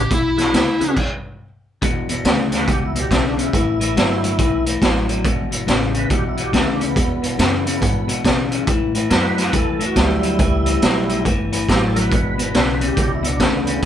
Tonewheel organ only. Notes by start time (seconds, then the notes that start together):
0.37 G#4 B4
0.45 D4 F#4 G#4 B4
0.80 G#4 B4
0.88 D4 F#4 G#4 B4
2.57 B4
2.72 G4
2.85 E4
3.00 G4
3.14 E4
3.27 D4
3.42 E4
5.98 B4
6.14 G4
6.29 E4
6.44 G4
6.58 E4
6.73 D4
6.86 B3
9.10 A#4
9.15 B4
9.58 A4
9.72 A4
9.86 F#4
9.99 G3 E4
11.72 G4
11.86 A4
11.96 A#4
12.01 B4
12.87 G4
12.99 G4
13.15 E4
13.28 D4
13.41 D3 B3